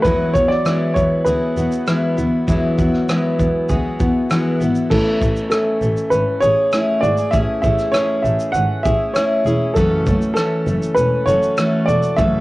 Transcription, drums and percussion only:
0.05 kick medium
0.05 shaker medium
0.35 kick medium
0.35 shaker soft
0.51 cross-stick soft
0.66 cross-stick medium
0.66 shaker medium
0.96 kick medium
0.96 shaker soft
1.26 shaker medium
1.57 shaker soft
1.72 shaker soft
1.87 cross-stick medium
1.87 shaker medium
2.18 shaker soft
2.48 kick medium
2.48 shaker medium
2.78 kick medium
2.78 shaker soft
2.94 cross-stick soft
3.09 cross-stick medium
3.09 shaker medium
3.39 kick medium
3.39 shaker soft
3.69 kick medium
3.69 shaker medium
4.00 kick medium
4.00 shaker soft
4.30 cross-stick medium
4.30 shaker medium
4.61 shaker soft
4.75 shaker soft
4.91 kick loud
4.91 crash medium
5.22 kick medium
5.22 shaker soft
5.36 shaker soft
5.51 cross-stick loud
5.51 shaker medium
5.82 shaker soft
5.97 shaker soft
6.12 shaker medium
6.42 shaker medium
6.72 cross-stick medium
6.72 shaker medium
7.03 shaker soft
7.17 shaker soft
7.33 kick loud
7.33 shaker medium
7.64 kick medium
7.64 shaker soft
7.79 cross-stick soft
7.79 shaker soft
7.94 cross-stick medium
7.94 shaker medium
8.25 shaker soft
8.40 shaker medium
8.54 shaker medium
8.85 kick medium
8.85 shaker medium
9.15 cross-stick loud
9.15 shaker medium
9.46 shaker soft
9.76 kick medium
9.76 shaker medium
10.06 kick medium
10.06 shaker soft
10.22 shaker soft
10.36 cross-stick medium
10.36 shaker medium
10.67 shaker soft
10.83 shaker medium
10.97 shaker medium
11.28 shaker medium
11.43 shaker soft
11.57 cross-stick loud
11.57 shaker medium
11.89 shaker medium
12.03 shaker soft
12.18 kick loud
12.18 shaker medium

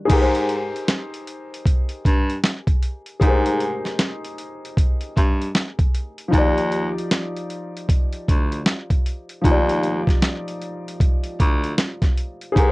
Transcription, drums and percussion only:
0.10 kick loud
0.10 closed hi-hat medium
0.10 crash medium
0.35 closed hi-hat medium
0.49 closed hi-hat medium
0.76 closed hi-hat soft
0.88 snare loud
0.88 closed hi-hat medium
1.14 closed hi-hat soft
1.27 closed hi-hat medium
1.54 closed hi-hat medium
1.66 kick medium
1.66 closed hi-hat medium
1.89 closed hi-hat soft
2.05 kick loud
2.05 closed hi-hat medium
2.30 closed hi-hat soft
2.44 snare loud
2.44 closed hi-hat loud
2.67 kick loud
2.67 closed hi-hat medium
2.83 closed hi-hat medium
3.06 closed hi-hat soft
3.21 kick loud
3.21 closed hi-hat medium
3.46 closed hi-hat medium
3.60 closed hi-hat medium
3.85 snare soft
3.85 closed hi-hat soft
3.99 snare loud
3.99 closed hi-hat medium
4.25 closed hi-hat medium
4.38 closed hi-hat medium
4.65 closed hi-hat soft
4.77 kick loud
4.77 closed hi-hat medium
5.01 closed hi-hat soft
5.17 kick medium
5.17 closed hi-hat medium
5.42 closed hi-hat soft
5.55 snare loud
5.55 closed hi-hat loud
5.79 kick loud
5.79 closed hi-hat soft
5.95 closed hi-hat medium
6.18 closed hi-hat soft
6.33 kick loud
6.33 closed hi-hat medium
6.58 closed hi-hat medium
6.72 closed hi-hat medium
6.98 closed hi-hat soft
7.11 snare loud
7.11 closed hi-hat medium
7.36 closed hi-hat soft
7.50 closed hi-hat medium
7.77 closed hi-hat medium
7.89 kick loud
7.89 closed hi-hat medium
8.13 closed hi-hat soft
8.28 kick medium
8.28 closed hi-hat medium
8.52 closed hi-hat medium
8.66 snare loud
8.66 closed hi-hat medium
8.90 kick medium
8.90 closed hi-hat soft
9.06 closed hi-hat medium
9.29 closed hi-hat soft
9.44 kick loud
9.44 closed hi-hat medium
9.69 closed hi-hat medium
9.83 closed hi-hat medium
10.07 kick medium
10.07 snare soft
10.07 closed hi-hat soft
10.22 snare loud
10.22 closed hi-hat medium
10.48 closed hi-hat soft
10.62 closed hi-hat medium
10.88 closed hi-hat medium
11.00 kick loud
11.00 closed hi-hat medium
11.23 closed hi-hat soft
11.40 kick medium
11.40 closed hi-hat medium
11.64 closed hi-hat soft
11.78 snare loud
11.78 closed hi-hat loud
12.02 kick medium
12.02 snare soft
12.02 closed hi-hat soft
12.18 closed hi-hat medium
12.41 closed hi-hat soft
12.56 kick loud
12.56 closed hi-hat medium

